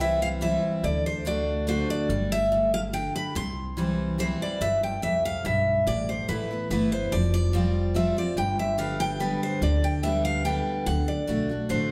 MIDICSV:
0, 0, Header, 1, 4, 480
1, 0, Start_track
1, 0, Tempo, 417827
1, 964, Time_signature, 3, 2, 24, 8
1, 13688, End_track
2, 0, Start_track
2, 0, Title_t, "Steel-string acoustic guitar"
2, 0, Program_c, 0, 25
2, 11, Note_on_c, 0, 76, 96
2, 249, Note_off_c, 0, 76, 0
2, 254, Note_on_c, 0, 77, 100
2, 316, Note_off_c, 0, 77, 0
2, 484, Note_on_c, 0, 76, 81
2, 966, Note_on_c, 0, 74, 100
2, 980, Note_off_c, 0, 76, 0
2, 1215, Note_off_c, 0, 74, 0
2, 1220, Note_on_c, 0, 72, 88
2, 1454, Note_off_c, 0, 72, 0
2, 1459, Note_on_c, 0, 74, 93
2, 1901, Note_off_c, 0, 74, 0
2, 1936, Note_on_c, 0, 72, 87
2, 2164, Note_off_c, 0, 72, 0
2, 2185, Note_on_c, 0, 74, 90
2, 2664, Note_on_c, 0, 76, 104
2, 2677, Note_off_c, 0, 74, 0
2, 3110, Note_off_c, 0, 76, 0
2, 3145, Note_on_c, 0, 77, 105
2, 3208, Note_off_c, 0, 77, 0
2, 3372, Note_on_c, 0, 79, 102
2, 3604, Note_off_c, 0, 79, 0
2, 3625, Note_on_c, 0, 83, 105
2, 3856, Note_off_c, 0, 83, 0
2, 3861, Note_on_c, 0, 84, 109
2, 4824, Note_on_c, 0, 72, 92
2, 4849, Note_off_c, 0, 84, 0
2, 4890, Note_off_c, 0, 72, 0
2, 5080, Note_on_c, 0, 74, 89
2, 5301, Note_on_c, 0, 76, 103
2, 5312, Note_off_c, 0, 74, 0
2, 5530, Note_off_c, 0, 76, 0
2, 5553, Note_on_c, 0, 79, 81
2, 5774, Note_off_c, 0, 79, 0
2, 5779, Note_on_c, 0, 76, 94
2, 6031, Note_off_c, 0, 76, 0
2, 6035, Note_on_c, 0, 77, 96
2, 6266, Note_off_c, 0, 77, 0
2, 6270, Note_on_c, 0, 76, 87
2, 6742, Note_off_c, 0, 76, 0
2, 6747, Note_on_c, 0, 74, 96
2, 6996, Note_on_c, 0, 72, 73
2, 6997, Note_off_c, 0, 74, 0
2, 7207, Note_off_c, 0, 72, 0
2, 7221, Note_on_c, 0, 71, 91
2, 7665, Note_off_c, 0, 71, 0
2, 7706, Note_on_c, 0, 71, 80
2, 7932, Note_off_c, 0, 71, 0
2, 7951, Note_on_c, 0, 72, 91
2, 8182, Note_on_c, 0, 74, 94
2, 8186, Note_off_c, 0, 72, 0
2, 8415, Note_off_c, 0, 74, 0
2, 8429, Note_on_c, 0, 74, 90
2, 9141, Note_off_c, 0, 74, 0
2, 9146, Note_on_c, 0, 76, 84
2, 9370, Note_off_c, 0, 76, 0
2, 9398, Note_on_c, 0, 74, 89
2, 9605, Note_off_c, 0, 74, 0
2, 9624, Note_on_c, 0, 79, 100
2, 9867, Note_off_c, 0, 79, 0
2, 9872, Note_on_c, 0, 76, 83
2, 10088, Note_off_c, 0, 76, 0
2, 10093, Note_on_c, 0, 77, 90
2, 10334, Note_off_c, 0, 77, 0
2, 10339, Note_on_c, 0, 79, 106
2, 10554, Note_off_c, 0, 79, 0
2, 10572, Note_on_c, 0, 71, 76
2, 10800, Note_off_c, 0, 71, 0
2, 10834, Note_on_c, 0, 72, 91
2, 11052, Note_off_c, 0, 72, 0
2, 11057, Note_on_c, 0, 74, 94
2, 11304, Note_on_c, 0, 79, 85
2, 11306, Note_off_c, 0, 74, 0
2, 11515, Note_off_c, 0, 79, 0
2, 11526, Note_on_c, 0, 76, 84
2, 11768, Note_off_c, 0, 76, 0
2, 11773, Note_on_c, 0, 77, 98
2, 12000, Note_off_c, 0, 77, 0
2, 12005, Note_on_c, 0, 79, 86
2, 12449, Note_off_c, 0, 79, 0
2, 12480, Note_on_c, 0, 78, 96
2, 12710, Note_off_c, 0, 78, 0
2, 12728, Note_on_c, 0, 74, 78
2, 13391, Note_off_c, 0, 74, 0
2, 13438, Note_on_c, 0, 72, 77
2, 13681, Note_off_c, 0, 72, 0
2, 13688, End_track
3, 0, Start_track
3, 0, Title_t, "Steel-string acoustic guitar"
3, 0, Program_c, 1, 25
3, 0, Note_on_c, 1, 48, 87
3, 0, Note_on_c, 1, 52, 96
3, 0, Note_on_c, 1, 55, 86
3, 4, Note_on_c, 1, 60, 96
3, 12, Note_on_c, 1, 64, 93
3, 433, Note_off_c, 1, 48, 0
3, 453, Note_off_c, 1, 52, 0
3, 457, Note_off_c, 1, 55, 0
3, 461, Note_off_c, 1, 60, 0
3, 465, Note_off_c, 1, 64, 0
3, 470, Note_on_c, 1, 52, 78
3, 479, Note_on_c, 1, 55, 96
3, 486, Note_on_c, 1, 60, 92
3, 492, Note_on_c, 1, 64, 94
3, 935, Note_off_c, 1, 52, 0
3, 939, Note_off_c, 1, 55, 0
3, 943, Note_off_c, 1, 60, 0
3, 946, Note_off_c, 1, 64, 0
3, 963, Note_on_c, 1, 50, 83
3, 1421, Note_off_c, 1, 50, 0
3, 1435, Note_on_c, 1, 50, 78
3, 1442, Note_on_c, 1, 57, 82
3, 1449, Note_on_c, 1, 62, 94
3, 1457, Note_on_c, 1, 66, 91
3, 1899, Note_off_c, 1, 50, 0
3, 1903, Note_off_c, 1, 57, 0
3, 1906, Note_off_c, 1, 62, 0
3, 1911, Note_off_c, 1, 66, 0
3, 1918, Note_on_c, 1, 50, 92
3, 1923, Note_on_c, 1, 57, 87
3, 1931, Note_on_c, 1, 62, 90
3, 1940, Note_on_c, 1, 66, 92
3, 2382, Note_off_c, 1, 50, 0
3, 2385, Note_off_c, 1, 57, 0
3, 2388, Note_off_c, 1, 62, 0
3, 2393, Note_off_c, 1, 66, 0
3, 2410, Note_on_c, 1, 55, 88
3, 2894, Note_on_c, 1, 45, 85
3, 3327, Note_off_c, 1, 55, 0
3, 3351, Note_off_c, 1, 45, 0
3, 3369, Note_on_c, 1, 50, 87
3, 3830, Note_off_c, 1, 50, 0
3, 3851, Note_on_c, 1, 48, 86
3, 4328, Note_on_c, 1, 52, 84
3, 4339, Note_on_c, 1, 55, 80
3, 4346, Note_on_c, 1, 60, 97
3, 4350, Note_on_c, 1, 64, 93
3, 4769, Note_off_c, 1, 48, 0
3, 4790, Note_off_c, 1, 52, 0
3, 4795, Note_off_c, 1, 55, 0
3, 4799, Note_off_c, 1, 60, 0
3, 4801, Note_off_c, 1, 64, 0
3, 4805, Note_on_c, 1, 52, 79
3, 4813, Note_on_c, 1, 55, 85
3, 4821, Note_on_c, 1, 60, 100
3, 4828, Note_on_c, 1, 64, 84
3, 5268, Note_off_c, 1, 52, 0
3, 5272, Note_off_c, 1, 55, 0
3, 5276, Note_off_c, 1, 60, 0
3, 5280, Note_off_c, 1, 64, 0
3, 5295, Note_on_c, 1, 43, 89
3, 5766, Note_off_c, 1, 43, 0
3, 5770, Note_on_c, 1, 41, 82
3, 6231, Note_off_c, 1, 41, 0
3, 6259, Note_on_c, 1, 43, 95
3, 6715, Note_off_c, 1, 43, 0
3, 6740, Note_on_c, 1, 45, 90
3, 7218, Note_on_c, 1, 52, 82
3, 7226, Note_on_c, 1, 57, 85
3, 7234, Note_on_c, 1, 59, 78
3, 7239, Note_on_c, 1, 64, 99
3, 7455, Note_off_c, 1, 52, 0
3, 7459, Note_off_c, 1, 57, 0
3, 7462, Note_off_c, 1, 64, 0
3, 7463, Note_off_c, 1, 59, 0
3, 7476, Note_on_c, 1, 64, 63
3, 7496, Note_on_c, 1, 59, 47
3, 7652, Note_off_c, 1, 45, 0
3, 7693, Note_off_c, 1, 64, 0
3, 7702, Note_on_c, 1, 52, 83
3, 7703, Note_off_c, 1, 59, 0
3, 7711, Note_on_c, 1, 57, 97
3, 7717, Note_on_c, 1, 59, 88
3, 7725, Note_on_c, 1, 64, 113
3, 7934, Note_off_c, 1, 64, 0
3, 7937, Note_off_c, 1, 52, 0
3, 7941, Note_off_c, 1, 57, 0
3, 7944, Note_off_c, 1, 59, 0
3, 7948, Note_on_c, 1, 64, 53
3, 7969, Note_on_c, 1, 59, 46
3, 8169, Note_off_c, 1, 64, 0
3, 8179, Note_off_c, 1, 59, 0
3, 8180, Note_on_c, 1, 53, 88
3, 8638, Note_off_c, 1, 53, 0
3, 8651, Note_on_c, 1, 53, 92
3, 8661, Note_on_c, 1, 55, 83
3, 8670, Note_on_c, 1, 60, 98
3, 8672, Note_on_c, 1, 65, 95
3, 9109, Note_off_c, 1, 53, 0
3, 9114, Note_off_c, 1, 55, 0
3, 9118, Note_off_c, 1, 60, 0
3, 9119, Note_off_c, 1, 65, 0
3, 9126, Note_on_c, 1, 53, 80
3, 9134, Note_on_c, 1, 55, 85
3, 9141, Note_on_c, 1, 60, 98
3, 9147, Note_on_c, 1, 65, 97
3, 9367, Note_off_c, 1, 53, 0
3, 9367, Note_off_c, 1, 65, 0
3, 9371, Note_off_c, 1, 55, 0
3, 9375, Note_off_c, 1, 60, 0
3, 9381, Note_on_c, 1, 65, 56
3, 9402, Note_on_c, 1, 60, 51
3, 9603, Note_off_c, 1, 65, 0
3, 9614, Note_off_c, 1, 60, 0
3, 9616, Note_on_c, 1, 43, 90
3, 10084, Note_on_c, 1, 50, 88
3, 10091, Note_on_c, 1, 55, 82
3, 10099, Note_on_c, 1, 59, 95
3, 10102, Note_on_c, 1, 67, 94
3, 10525, Note_off_c, 1, 43, 0
3, 10543, Note_off_c, 1, 50, 0
3, 10546, Note_off_c, 1, 55, 0
3, 10550, Note_off_c, 1, 59, 0
3, 10552, Note_off_c, 1, 67, 0
3, 10566, Note_on_c, 1, 50, 82
3, 10574, Note_on_c, 1, 55, 92
3, 10586, Note_on_c, 1, 59, 87
3, 10591, Note_on_c, 1, 67, 95
3, 11023, Note_off_c, 1, 50, 0
3, 11027, Note_off_c, 1, 55, 0
3, 11033, Note_off_c, 1, 59, 0
3, 11035, Note_off_c, 1, 67, 0
3, 11051, Note_on_c, 1, 50, 91
3, 11508, Note_off_c, 1, 50, 0
3, 11522, Note_on_c, 1, 50, 84
3, 11530, Note_on_c, 1, 55, 84
3, 11538, Note_on_c, 1, 59, 83
3, 11548, Note_on_c, 1, 67, 98
3, 11979, Note_off_c, 1, 50, 0
3, 11983, Note_off_c, 1, 55, 0
3, 11987, Note_off_c, 1, 59, 0
3, 11991, Note_off_c, 1, 67, 0
3, 12001, Note_on_c, 1, 50, 87
3, 12006, Note_on_c, 1, 55, 89
3, 12015, Note_on_c, 1, 59, 92
3, 12023, Note_on_c, 1, 67, 93
3, 12457, Note_off_c, 1, 50, 0
3, 12460, Note_off_c, 1, 55, 0
3, 12464, Note_off_c, 1, 59, 0
3, 12468, Note_off_c, 1, 67, 0
3, 12483, Note_on_c, 1, 50, 85
3, 12938, Note_off_c, 1, 50, 0
3, 12952, Note_on_c, 1, 50, 89
3, 12959, Note_on_c, 1, 57, 80
3, 12967, Note_on_c, 1, 62, 90
3, 12973, Note_on_c, 1, 66, 92
3, 13191, Note_off_c, 1, 66, 0
3, 13192, Note_off_c, 1, 50, 0
3, 13196, Note_off_c, 1, 57, 0
3, 13200, Note_off_c, 1, 62, 0
3, 13204, Note_on_c, 1, 66, 59
3, 13225, Note_on_c, 1, 62, 47
3, 13427, Note_off_c, 1, 66, 0
3, 13431, Note_on_c, 1, 50, 92
3, 13433, Note_off_c, 1, 62, 0
3, 13440, Note_on_c, 1, 57, 95
3, 13446, Note_on_c, 1, 62, 97
3, 13453, Note_on_c, 1, 66, 90
3, 13669, Note_off_c, 1, 66, 0
3, 13670, Note_off_c, 1, 50, 0
3, 13675, Note_off_c, 1, 57, 0
3, 13678, Note_off_c, 1, 62, 0
3, 13688, End_track
4, 0, Start_track
4, 0, Title_t, "Upright bass"
4, 0, Program_c, 2, 32
4, 0, Note_on_c, 2, 36, 100
4, 637, Note_off_c, 2, 36, 0
4, 959, Note_on_c, 2, 38, 100
4, 2083, Note_off_c, 2, 38, 0
4, 2403, Note_on_c, 2, 31, 95
4, 3527, Note_off_c, 2, 31, 0
4, 3850, Note_on_c, 2, 36, 92
4, 4971, Note_off_c, 2, 36, 0
4, 5293, Note_on_c, 2, 31, 92
4, 5667, Note_off_c, 2, 31, 0
4, 5773, Note_on_c, 2, 36, 78
4, 6183, Note_off_c, 2, 36, 0
4, 6255, Note_on_c, 2, 35, 86
4, 6664, Note_off_c, 2, 35, 0
4, 6737, Note_on_c, 2, 33, 93
4, 7110, Note_off_c, 2, 33, 0
4, 7221, Note_on_c, 2, 33, 87
4, 7627, Note_off_c, 2, 33, 0
4, 7700, Note_on_c, 2, 31, 81
4, 8106, Note_off_c, 2, 31, 0
4, 8179, Note_on_c, 2, 29, 91
4, 9293, Note_off_c, 2, 29, 0
4, 9609, Note_on_c, 2, 31, 91
4, 10724, Note_off_c, 2, 31, 0
4, 11044, Note_on_c, 2, 38, 100
4, 12158, Note_off_c, 2, 38, 0
4, 12482, Note_on_c, 2, 38, 102
4, 12853, Note_off_c, 2, 38, 0
4, 12959, Note_on_c, 2, 35, 74
4, 13365, Note_off_c, 2, 35, 0
4, 13436, Note_on_c, 2, 33, 91
4, 13688, Note_off_c, 2, 33, 0
4, 13688, End_track
0, 0, End_of_file